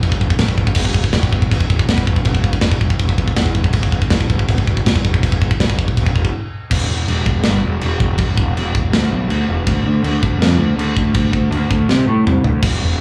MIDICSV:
0, 0, Header, 1, 3, 480
1, 0, Start_track
1, 0, Tempo, 370370
1, 1002, Time_signature, 4, 2, 24, 8
1, 16858, End_track
2, 0, Start_track
2, 0, Title_t, "Picked electric bass"
2, 0, Program_c, 0, 34
2, 43, Note_on_c, 0, 28, 98
2, 186, Note_off_c, 0, 28, 0
2, 277, Note_on_c, 0, 28, 97
2, 422, Note_off_c, 0, 28, 0
2, 506, Note_on_c, 0, 33, 94
2, 654, Note_off_c, 0, 33, 0
2, 746, Note_on_c, 0, 28, 99
2, 895, Note_off_c, 0, 28, 0
2, 981, Note_on_c, 0, 28, 103
2, 1303, Note_off_c, 0, 28, 0
2, 1475, Note_on_c, 0, 28, 91
2, 1635, Note_off_c, 0, 28, 0
2, 1712, Note_on_c, 0, 28, 90
2, 1873, Note_off_c, 0, 28, 0
2, 1965, Note_on_c, 0, 28, 97
2, 2122, Note_off_c, 0, 28, 0
2, 2209, Note_on_c, 0, 28, 88
2, 2365, Note_off_c, 0, 28, 0
2, 2445, Note_on_c, 0, 40, 87
2, 2602, Note_off_c, 0, 40, 0
2, 2688, Note_on_c, 0, 28, 94
2, 2844, Note_off_c, 0, 28, 0
2, 2924, Note_on_c, 0, 28, 104
2, 3239, Note_off_c, 0, 28, 0
2, 3401, Note_on_c, 0, 28, 84
2, 3560, Note_off_c, 0, 28, 0
2, 3642, Note_on_c, 0, 28, 96
2, 3801, Note_off_c, 0, 28, 0
2, 3882, Note_on_c, 0, 28, 93
2, 4041, Note_off_c, 0, 28, 0
2, 4119, Note_on_c, 0, 28, 97
2, 4279, Note_off_c, 0, 28, 0
2, 4368, Note_on_c, 0, 40, 95
2, 4526, Note_off_c, 0, 40, 0
2, 4603, Note_on_c, 0, 28, 99
2, 4762, Note_off_c, 0, 28, 0
2, 4840, Note_on_c, 0, 28, 99
2, 5158, Note_off_c, 0, 28, 0
2, 5321, Note_on_c, 0, 28, 90
2, 5481, Note_off_c, 0, 28, 0
2, 5569, Note_on_c, 0, 28, 94
2, 5726, Note_off_c, 0, 28, 0
2, 5815, Note_on_c, 0, 28, 100
2, 5970, Note_off_c, 0, 28, 0
2, 6057, Note_on_c, 0, 28, 96
2, 6212, Note_off_c, 0, 28, 0
2, 6306, Note_on_c, 0, 40, 93
2, 6457, Note_off_c, 0, 40, 0
2, 6545, Note_on_c, 0, 28, 94
2, 6697, Note_off_c, 0, 28, 0
2, 6779, Note_on_c, 0, 28, 104
2, 7090, Note_off_c, 0, 28, 0
2, 7257, Note_on_c, 0, 28, 91
2, 7411, Note_off_c, 0, 28, 0
2, 7493, Note_on_c, 0, 28, 93
2, 7649, Note_off_c, 0, 28, 0
2, 7741, Note_on_c, 0, 28, 96
2, 7894, Note_off_c, 0, 28, 0
2, 7985, Note_on_c, 0, 28, 93
2, 8137, Note_off_c, 0, 28, 0
2, 8695, Note_on_c, 0, 28, 102
2, 8892, Note_off_c, 0, 28, 0
2, 8931, Note_on_c, 0, 28, 94
2, 9130, Note_off_c, 0, 28, 0
2, 9178, Note_on_c, 0, 28, 87
2, 9374, Note_off_c, 0, 28, 0
2, 9410, Note_on_c, 0, 28, 97
2, 9609, Note_off_c, 0, 28, 0
2, 9658, Note_on_c, 0, 31, 98
2, 9854, Note_off_c, 0, 31, 0
2, 9901, Note_on_c, 0, 28, 92
2, 10095, Note_off_c, 0, 28, 0
2, 10144, Note_on_c, 0, 28, 98
2, 10337, Note_off_c, 0, 28, 0
2, 10368, Note_on_c, 0, 28, 92
2, 10568, Note_off_c, 0, 28, 0
2, 10607, Note_on_c, 0, 28, 101
2, 10807, Note_off_c, 0, 28, 0
2, 10856, Note_on_c, 0, 28, 95
2, 11052, Note_off_c, 0, 28, 0
2, 11107, Note_on_c, 0, 28, 93
2, 11298, Note_off_c, 0, 28, 0
2, 11340, Note_on_c, 0, 28, 95
2, 11534, Note_off_c, 0, 28, 0
2, 11560, Note_on_c, 0, 38, 97
2, 11762, Note_off_c, 0, 38, 0
2, 11810, Note_on_c, 0, 35, 94
2, 12008, Note_off_c, 0, 35, 0
2, 12026, Note_on_c, 0, 38, 96
2, 12234, Note_off_c, 0, 38, 0
2, 12298, Note_on_c, 0, 28, 102
2, 12492, Note_off_c, 0, 28, 0
2, 12537, Note_on_c, 0, 38, 104
2, 12731, Note_off_c, 0, 38, 0
2, 12769, Note_on_c, 0, 38, 96
2, 12967, Note_off_c, 0, 38, 0
2, 13007, Note_on_c, 0, 38, 87
2, 13206, Note_off_c, 0, 38, 0
2, 13256, Note_on_c, 0, 38, 98
2, 13450, Note_off_c, 0, 38, 0
2, 13462, Note_on_c, 0, 41, 101
2, 13671, Note_off_c, 0, 41, 0
2, 13719, Note_on_c, 0, 38, 95
2, 13920, Note_off_c, 0, 38, 0
2, 13951, Note_on_c, 0, 38, 93
2, 14155, Note_off_c, 0, 38, 0
2, 14220, Note_on_c, 0, 38, 95
2, 14412, Note_off_c, 0, 38, 0
2, 14452, Note_on_c, 0, 38, 108
2, 14648, Note_off_c, 0, 38, 0
2, 14686, Note_on_c, 0, 38, 94
2, 14883, Note_off_c, 0, 38, 0
2, 14913, Note_on_c, 0, 38, 91
2, 15116, Note_off_c, 0, 38, 0
2, 15174, Note_on_c, 0, 38, 96
2, 15368, Note_off_c, 0, 38, 0
2, 15413, Note_on_c, 0, 48, 96
2, 15608, Note_off_c, 0, 48, 0
2, 15652, Note_on_c, 0, 45, 98
2, 15846, Note_off_c, 0, 45, 0
2, 15888, Note_on_c, 0, 36, 93
2, 16084, Note_off_c, 0, 36, 0
2, 16137, Note_on_c, 0, 38, 94
2, 16329, Note_off_c, 0, 38, 0
2, 16362, Note_on_c, 0, 28, 104
2, 16560, Note_off_c, 0, 28, 0
2, 16624, Note_on_c, 0, 28, 99
2, 16813, Note_off_c, 0, 28, 0
2, 16858, End_track
3, 0, Start_track
3, 0, Title_t, "Drums"
3, 37, Note_on_c, 9, 49, 57
3, 38, Note_on_c, 9, 36, 85
3, 154, Note_off_c, 9, 36, 0
3, 154, Note_on_c, 9, 36, 91
3, 167, Note_off_c, 9, 49, 0
3, 273, Note_off_c, 9, 36, 0
3, 273, Note_on_c, 9, 36, 91
3, 393, Note_off_c, 9, 36, 0
3, 393, Note_on_c, 9, 36, 95
3, 502, Note_on_c, 9, 49, 64
3, 503, Note_on_c, 9, 38, 118
3, 510, Note_off_c, 9, 36, 0
3, 510, Note_on_c, 9, 36, 90
3, 627, Note_off_c, 9, 36, 0
3, 627, Note_on_c, 9, 36, 89
3, 632, Note_off_c, 9, 49, 0
3, 633, Note_off_c, 9, 38, 0
3, 748, Note_off_c, 9, 36, 0
3, 748, Note_on_c, 9, 36, 90
3, 868, Note_off_c, 9, 36, 0
3, 868, Note_on_c, 9, 36, 89
3, 968, Note_on_c, 9, 49, 65
3, 968, Note_on_c, 9, 57, 121
3, 987, Note_off_c, 9, 36, 0
3, 987, Note_on_c, 9, 36, 89
3, 1098, Note_off_c, 9, 49, 0
3, 1098, Note_off_c, 9, 57, 0
3, 1104, Note_off_c, 9, 36, 0
3, 1104, Note_on_c, 9, 36, 89
3, 1224, Note_off_c, 9, 36, 0
3, 1224, Note_on_c, 9, 36, 93
3, 1346, Note_off_c, 9, 36, 0
3, 1346, Note_on_c, 9, 36, 91
3, 1462, Note_on_c, 9, 49, 62
3, 1463, Note_on_c, 9, 38, 114
3, 1471, Note_off_c, 9, 36, 0
3, 1471, Note_on_c, 9, 36, 84
3, 1592, Note_off_c, 9, 49, 0
3, 1593, Note_off_c, 9, 38, 0
3, 1594, Note_off_c, 9, 36, 0
3, 1594, Note_on_c, 9, 36, 89
3, 1718, Note_off_c, 9, 36, 0
3, 1718, Note_on_c, 9, 36, 87
3, 1841, Note_off_c, 9, 36, 0
3, 1841, Note_on_c, 9, 36, 83
3, 1963, Note_off_c, 9, 36, 0
3, 1963, Note_on_c, 9, 36, 88
3, 1971, Note_on_c, 9, 49, 66
3, 2080, Note_off_c, 9, 36, 0
3, 2080, Note_on_c, 9, 36, 88
3, 2101, Note_off_c, 9, 49, 0
3, 2203, Note_off_c, 9, 36, 0
3, 2203, Note_on_c, 9, 36, 93
3, 2325, Note_off_c, 9, 36, 0
3, 2325, Note_on_c, 9, 36, 89
3, 2445, Note_on_c, 9, 49, 68
3, 2446, Note_off_c, 9, 36, 0
3, 2446, Note_on_c, 9, 36, 85
3, 2447, Note_on_c, 9, 38, 111
3, 2563, Note_off_c, 9, 36, 0
3, 2563, Note_on_c, 9, 36, 95
3, 2575, Note_off_c, 9, 49, 0
3, 2576, Note_off_c, 9, 38, 0
3, 2686, Note_off_c, 9, 36, 0
3, 2686, Note_on_c, 9, 36, 90
3, 2804, Note_off_c, 9, 36, 0
3, 2804, Note_on_c, 9, 36, 91
3, 2913, Note_on_c, 9, 49, 65
3, 2923, Note_off_c, 9, 36, 0
3, 2923, Note_on_c, 9, 36, 92
3, 3040, Note_off_c, 9, 36, 0
3, 3040, Note_on_c, 9, 36, 89
3, 3042, Note_off_c, 9, 49, 0
3, 3161, Note_off_c, 9, 36, 0
3, 3161, Note_on_c, 9, 36, 86
3, 3279, Note_off_c, 9, 36, 0
3, 3279, Note_on_c, 9, 36, 91
3, 3386, Note_on_c, 9, 49, 62
3, 3387, Note_on_c, 9, 38, 114
3, 3397, Note_off_c, 9, 36, 0
3, 3397, Note_on_c, 9, 36, 83
3, 3516, Note_off_c, 9, 49, 0
3, 3517, Note_off_c, 9, 38, 0
3, 3519, Note_off_c, 9, 36, 0
3, 3519, Note_on_c, 9, 36, 94
3, 3642, Note_off_c, 9, 36, 0
3, 3642, Note_on_c, 9, 36, 85
3, 3762, Note_off_c, 9, 36, 0
3, 3762, Note_on_c, 9, 36, 82
3, 3877, Note_on_c, 9, 49, 57
3, 3883, Note_off_c, 9, 36, 0
3, 3883, Note_on_c, 9, 36, 90
3, 4003, Note_off_c, 9, 36, 0
3, 4003, Note_on_c, 9, 36, 87
3, 4007, Note_off_c, 9, 49, 0
3, 4123, Note_off_c, 9, 36, 0
3, 4123, Note_on_c, 9, 36, 90
3, 4246, Note_off_c, 9, 36, 0
3, 4246, Note_on_c, 9, 36, 92
3, 4360, Note_on_c, 9, 49, 62
3, 4361, Note_on_c, 9, 38, 118
3, 4364, Note_off_c, 9, 36, 0
3, 4364, Note_on_c, 9, 36, 93
3, 4481, Note_off_c, 9, 36, 0
3, 4481, Note_on_c, 9, 36, 92
3, 4489, Note_off_c, 9, 49, 0
3, 4491, Note_off_c, 9, 38, 0
3, 4599, Note_off_c, 9, 36, 0
3, 4599, Note_on_c, 9, 36, 88
3, 4720, Note_off_c, 9, 36, 0
3, 4720, Note_on_c, 9, 36, 89
3, 4830, Note_on_c, 9, 49, 64
3, 4842, Note_off_c, 9, 36, 0
3, 4842, Note_on_c, 9, 36, 94
3, 4960, Note_off_c, 9, 49, 0
3, 4965, Note_off_c, 9, 36, 0
3, 4965, Note_on_c, 9, 36, 92
3, 5085, Note_off_c, 9, 36, 0
3, 5085, Note_on_c, 9, 36, 92
3, 5207, Note_off_c, 9, 36, 0
3, 5207, Note_on_c, 9, 36, 87
3, 5318, Note_on_c, 9, 49, 66
3, 5319, Note_on_c, 9, 38, 113
3, 5326, Note_off_c, 9, 36, 0
3, 5326, Note_on_c, 9, 36, 86
3, 5447, Note_off_c, 9, 49, 0
3, 5449, Note_off_c, 9, 38, 0
3, 5450, Note_off_c, 9, 36, 0
3, 5450, Note_on_c, 9, 36, 92
3, 5570, Note_off_c, 9, 36, 0
3, 5570, Note_on_c, 9, 36, 88
3, 5693, Note_off_c, 9, 36, 0
3, 5693, Note_on_c, 9, 36, 83
3, 5810, Note_on_c, 9, 49, 64
3, 5815, Note_off_c, 9, 36, 0
3, 5815, Note_on_c, 9, 36, 88
3, 5936, Note_off_c, 9, 36, 0
3, 5936, Note_on_c, 9, 36, 82
3, 5940, Note_off_c, 9, 49, 0
3, 6058, Note_off_c, 9, 36, 0
3, 6058, Note_on_c, 9, 36, 90
3, 6183, Note_off_c, 9, 36, 0
3, 6183, Note_on_c, 9, 36, 89
3, 6303, Note_off_c, 9, 36, 0
3, 6303, Note_on_c, 9, 36, 88
3, 6307, Note_on_c, 9, 49, 70
3, 6308, Note_on_c, 9, 38, 120
3, 6422, Note_off_c, 9, 36, 0
3, 6422, Note_on_c, 9, 36, 93
3, 6436, Note_off_c, 9, 49, 0
3, 6438, Note_off_c, 9, 38, 0
3, 6541, Note_off_c, 9, 36, 0
3, 6541, Note_on_c, 9, 36, 90
3, 6662, Note_off_c, 9, 36, 0
3, 6662, Note_on_c, 9, 36, 89
3, 6780, Note_off_c, 9, 36, 0
3, 6780, Note_on_c, 9, 36, 90
3, 6784, Note_on_c, 9, 49, 65
3, 6897, Note_off_c, 9, 36, 0
3, 6897, Note_on_c, 9, 36, 91
3, 6914, Note_off_c, 9, 49, 0
3, 7020, Note_off_c, 9, 36, 0
3, 7020, Note_on_c, 9, 36, 90
3, 7140, Note_off_c, 9, 36, 0
3, 7140, Note_on_c, 9, 36, 88
3, 7260, Note_off_c, 9, 36, 0
3, 7260, Note_on_c, 9, 36, 87
3, 7260, Note_on_c, 9, 49, 62
3, 7261, Note_on_c, 9, 38, 114
3, 7382, Note_off_c, 9, 36, 0
3, 7382, Note_on_c, 9, 36, 90
3, 7390, Note_off_c, 9, 49, 0
3, 7391, Note_off_c, 9, 38, 0
3, 7499, Note_off_c, 9, 36, 0
3, 7499, Note_on_c, 9, 36, 92
3, 7621, Note_off_c, 9, 36, 0
3, 7621, Note_on_c, 9, 36, 78
3, 7740, Note_off_c, 9, 36, 0
3, 7740, Note_on_c, 9, 36, 85
3, 7745, Note_on_c, 9, 49, 59
3, 7860, Note_off_c, 9, 36, 0
3, 7860, Note_on_c, 9, 36, 90
3, 7875, Note_off_c, 9, 49, 0
3, 7978, Note_off_c, 9, 36, 0
3, 7978, Note_on_c, 9, 36, 87
3, 8096, Note_off_c, 9, 36, 0
3, 8096, Note_on_c, 9, 36, 89
3, 8226, Note_off_c, 9, 36, 0
3, 8696, Note_on_c, 9, 36, 117
3, 8697, Note_on_c, 9, 52, 69
3, 8697, Note_on_c, 9, 57, 124
3, 8825, Note_off_c, 9, 36, 0
3, 8826, Note_off_c, 9, 52, 0
3, 8826, Note_off_c, 9, 57, 0
3, 9177, Note_on_c, 9, 52, 72
3, 9307, Note_off_c, 9, 52, 0
3, 9412, Note_on_c, 9, 36, 88
3, 9541, Note_off_c, 9, 36, 0
3, 9636, Note_on_c, 9, 52, 69
3, 9637, Note_on_c, 9, 38, 113
3, 9765, Note_off_c, 9, 52, 0
3, 9767, Note_off_c, 9, 38, 0
3, 10126, Note_on_c, 9, 52, 67
3, 10256, Note_off_c, 9, 52, 0
3, 10371, Note_on_c, 9, 36, 92
3, 10501, Note_off_c, 9, 36, 0
3, 10598, Note_on_c, 9, 52, 69
3, 10610, Note_on_c, 9, 36, 119
3, 10728, Note_off_c, 9, 52, 0
3, 10740, Note_off_c, 9, 36, 0
3, 10854, Note_on_c, 9, 36, 94
3, 10983, Note_off_c, 9, 36, 0
3, 11106, Note_on_c, 9, 52, 64
3, 11236, Note_off_c, 9, 52, 0
3, 11339, Note_on_c, 9, 36, 90
3, 11468, Note_off_c, 9, 36, 0
3, 11577, Note_on_c, 9, 52, 61
3, 11579, Note_on_c, 9, 38, 107
3, 11707, Note_off_c, 9, 52, 0
3, 11708, Note_off_c, 9, 38, 0
3, 12055, Note_on_c, 9, 52, 62
3, 12185, Note_off_c, 9, 52, 0
3, 12527, Note_on_c, 9, 52, 65
3, 12532, Note_on_c, 9, 36, 123
3, 12656, Note_off_c, 9, 52, 0
3, 12661, Note_off_c, 9, 36, 0
3, 13015, Note_on_c, 9, 52, 70
3, 13145, Note_off_c, 9, 52, 0
3, 13256, Note_on_c, 9, 36, 91
3, 13385, Note_off_c, 9, 36, 0
3, 13504, Note_on_c, 9, 52, 70
3, 13506, Note_on_c, 9, 38, 116
3, 13634, Note_off_c, 9, 52, 0
3, 13635, Note_off_c, 9, 38, 0
3, 13985, Note_on_c, 9, 52, 70
3, 14114, Note_off_c, 9, 52, 0
3, 14211, Note_on_c, 9, 36, 87
3, 14341, Note_off_c, 9, 36, 0
3, 14441, Note_on_c, 9, 52, 71
3, 14448, Note_on_c, 9, 36, 117
3, 14571, Note_off_c, 9, 52, 0
3, 14578, Note_off_c, 9, 36, 0
3, 14687, Note_on_c, 9, 36, 89
3, 14817, Note_off_c, 9, 36, 0
3, 14932, Note_on_c, 9, 52, 62
3, 15062, Note_off_c, 9, 52, 0
3, 15171, Note_on_c, 9, 36, 93
3, 15301, Note_off_c, 9, 36, 0
3, 15413, Note_on_c, 9, 38, 66
3, 15543, Note_off_c, 9, 38, 0
3, 15901, Note_on_c, 9, 45, 99
3, 16031, Note_off_c, 9, 45, 0
3, 16127, Note_on_c, 9, 43, 98
3, 16256, Note_off_c, 9, 43, 0
3, 16364, Note_on_c, 9, 36, 124
3, 16368, Note_on_c, 9, 52, 66
3, 16368, Note_on_c, 9, 57, 109
3, 16494, Note_off_c, 9, 36, 0
3, 16498, Note_off_c, 9, 52, 0
3, 16498, Note_off_c, 9, 57, 0
3, 16858, End_track
0, 0, End_of_file